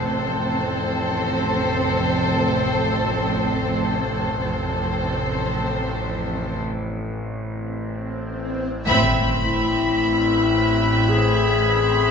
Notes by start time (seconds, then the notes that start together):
Already playing: A4
0.00 F1 A1 F2 C4 C5
4.42 F1 A1 F2 C4 A4 C5, swell
8.87 A1 A2 C4 E5 B5, impact
9.44 E4
11.09 G#4